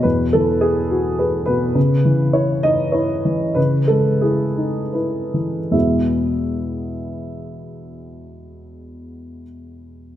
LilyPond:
<<
  \new Staff \with { instrumentName = "Upright piano" } { \time 3/4 \key e \major \tempo 4 = 84 b'8 a'8 gis'4 b'8 b'8~ | b'4 cis''8 dis''8 cis''4 | b'8 a'8 gis'4 b'8 r8 | <e, b, gis b e' gis' e''>2.~ |
<e, b, gis b e' gis' e''>2. | }
  \new Staff \with { instrumentName = "Upright piano" } { \clef bass \time 3/4 \key e \major <e, b,>8 e4 fis'8 gis'8 b,8 | cis8 e8 e'8 dis'8 e'8 e8 | cis8 gis8 e'8 dis'8 e'8 e8 | r2. |
r2. | }
>>